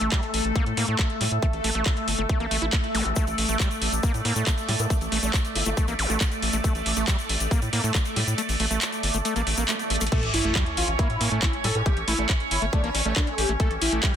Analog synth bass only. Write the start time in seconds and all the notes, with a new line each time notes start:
0.01 A1
0.34 A1
0.45 A1
0.66 A2
0.77 A2
0.88 A2
1.21 A2
1.32 A2
1.53 A1
1.64 A1
1.75 A1
2.08 G1
2.19 G1
2.40 A1
2.51 A1
2.62 A1
2.95 A1
3.05 A1
3.27 A1
3.38 A1
3.49 A1
3.82 A1
3.92 A1
4.14 A2
4.25 A2
4.36 A2
4.68 A2
4.79 A2
5.01 A1
5.12 A1
5.23 A1
5.55 G1
5.66 G1
5.88 A1
5.99 A1
6.10 A1
6.42 A1
6.53 A1
6.75 A1
6.86 A1
6.97 A1
7.29 A1
7.40 A1
7.62 A2
7.73 A2
7.84 A2
8.16 A2
8.27 A2
8.49 A1
8.60 A1
8.71 A1
9.03 G1
9.14 G1
9.36 A1
9.47 A1
9.58 A1
9.90 A1
10.01 A1
10.23 A1
10.34 A1
10.45 A1
10.77 A1
10.88 A1
11.10 A2
11.21 A2
11.32 A2
11.64 A2
11.75 A2
11.97 A1
12.08 A1
12.19 A1
12.51 G1
12.62 G1
12.84 A1
12.95 A1
13.05 A1
13.38 A1
13.49 A1
13.71 A1
13.82 A1
13.92 A1